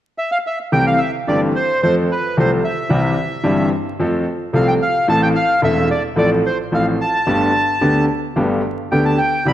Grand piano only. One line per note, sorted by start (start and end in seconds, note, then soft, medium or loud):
0.72 0.96 C2 medium
0.72 0.96 C3 medium
0.72 0.96 E3 medium
0.72 0.96 A3 soft
0.72 0.96 C4 medium
0.72 0.96 G4 medium
1.27 1.51 G1 medium
1.27 1.51 G2 medium
1.27 1.51 E3 medium
1.27 1.51 A3 medium
1.27 1.51 C4 medium
1.27 1.51 G4 medium
1.83 2.06 F2 medium
1.83 2.06 F3 medium
1.83 2.06 A3 medium
1.83 2.06 C4 medium
1.83 2.06 A4 medium
2.37 2.60 C2 medium
2.37 2.60 C3 medium
2.37 2.60 F3 medium
2.37 2.60 A3 soft
2.37 2.60 C4 soft
2.37 2.60 A4 medium
2.89 3.14 C2 medium
2.89 3.14 C3 medium
2.89 3.13 E3 medium
2.89 3.13 G3 medium
2.89 3.14 C4 medium
2.89 3.14 G4 medium
3.43 3.68 G1 medium
3.43 3.68 G2 medium
3.43 3.68 E3 medium
3.43 3.68 G3 medium
3.43 3.68 C4 medium
3.43 3.68 G4 medium
3.99 4.23 F2 medium
3.99 4.23 F3 medium
3.99 4.23 A3 medium
3.99 4.23 C4 medium
3.99 4.23 A4 medium
4.53 4.77 C2 medium
4.53 4.77 C3 medium
4.53 4.77 F3 medium
4.53 4.76 A3 soft
4.53 4.77 C4 medium
4.53 4.77 A4 medium
5.08 5.31 A1 medium
5.08 5.31 A2 medium
5.08 5.31 E3 medium
5.08 5.31 A3 medium
5.08 5.31 C4 medium
5.08 5.31 A4 medium
5.62 5.85 E1 medium
5.62 5.86 E2 medium
5.62 5.86 E3 medium
5.62 5.85 A3 medium
5.62 5.86 C4 soft
5.62 5.86 A4 medium
6.16 6.39 A1 medium
6.16 6.40 A2 medium
6.16 6.40 F3 medium
6.16 6.40 A3 medium
6.16 6.40 C4 medium
6.16 6.40 A4 medium
6.72 6.95 A1 medium
6.72 6.95 A2 medium
6.72 6.95 F3 soft
6.72 6.95 A3 soft
6.72 6.95 C4 medium
6.72 6.95 A4 medium
7.26 7.50 G1 medium
7.26 7.50 G2 medium
7.26 7.49 D3 medium
7.26 7.49 A3 medium
7.26 7.50 B3 soft
7.26 7.50 G4 medium
7.81 8.04 D2 medium
7.81 8.04 D3 medium
7.81 8.04 A3 soft
7.81 8.04 B3 medium
7.81 8.04 G4 medium
8.36 8.59 G1 medium
8.36 8.59 G2 medium
8.36 8.59 D3 medium
8.36 8.59 A3 medium
8.36 8.59 B3 medium
8.36 8.59 G4 medium
8.92 9.15 D2 medium
8.92 9.15 D3 medium
8.92 9.15 A3 soft
8.92 9.15 B3 soft
8.92 9.15 G4 medium
9.45 9.53 C2 medium
9.45 9.53 C3 medium
9.45 9.53 E3 medium
9.45 9.53 G3 medium
9.45 9.53 C4 medium
9.45 9.53 G4 medium